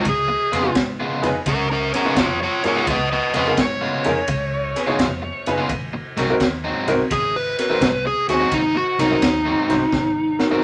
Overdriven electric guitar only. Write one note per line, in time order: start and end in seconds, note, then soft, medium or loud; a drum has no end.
0.28 muted overdriven electric guitar stroke medium
0.52 0.67 C#3 medium
0.52 0.68 G#3 medium
0.52 0.68 B3 medium
0.52 0.68 F4 medium
0.76 muted overdriven electric guitar stroke soft
1.00 1.28 C#3 medium
1.00 1.27 G#3 medium
1.00 1.27 B3 medium
1.00 1.27 F4 medium
1.46 muted overdriven electric guitar stroke soft
2.05 2.25 C#3 medium
2.05 2.25 G#3 medium
2.05 2.24 B3 medium
2.05 2.24 F4 medium
2.40 muted overdriven electric guitar stroke soft
2.76 2.95 C#3 medium
2.76 2.95 G#3 medium
2.76 2.95 B3 medium
2.76 2.95 F4 medium
3.12 muted overdriven electric guitar stroke medium
3.34 3.49 C#3 medium
3.34 3.50 G#3 medium
3.34 3.50 B3 medium
3.34 3.50 F4 medium
3.58 muted overdriven electric guitar stroke soft
3.81 4.09 C#3 medium
3.81 4.09 G#3 medium
3.81 4.09 B3 medium
3.81 4.09 F4 medium
4.28 muted overdriven electric guitar stroke soft
4.87 5.07 C#3 medium
4.87 5.06 G#3 medium
4.87 5.06 B3 medium
4.87 5.06 F4 medium
5.22 muted overdriven electric guitar stroke soft
5.58 5.70 C#3 medium
5.58 5.70 G#3 medium
5.58 5.70 B3 medium
5.58 5.70 F4 medium
5.93 muted overdriven electric guitar stroke medium
6.17 6.32 G#2 medium
6.17 6.32 F#3 medium
6.17 6.33 C4 medium
6.17 6.33 D#4 medium
6.40 muted overdriven electric guitar stroke soft
6.64 6.92 G#2 medium
6.64 6.92 F#3 medium
6.64 6.92 C4 medium
6.64 6.91 D#4 medium
7.11 muted overdriven electric guitar stroke soft
7.70 7.89 G#2 medium
7.70 7.89 F#3 medium
7.70 7.89 C4 medium
7.70 7.88 D#4 medium
8.05 muted overdriven electric guitar stroke soft
8.40 8.59 G#2 medium
8.40 8.60 F#3 medium
8.40 8.59 C4 medium
8.40 8.59 D#4 loud
8.75 muted overdriven electric guitar stroke medium
8.99 9.14 G#2 medium
8.99 9.14 F#3 medium
8.99 9.15 C4 medium
8.99 9.15 D#4 medium
9.23 muted overdriven electric guitar stroke soft
9.45 9.74 G#2 medium
9.45 9.73 F#3 medium
9.45 9.73 C4 medium
9.45 9.73 D#4 medium
9.93 muted overdriven electric guitar stroke medium
10.51 10.64 G#2 medium
10.51 10.64 F#3 medium
10.51 10.64 C4 medium
10.51 10.64 D#4 medium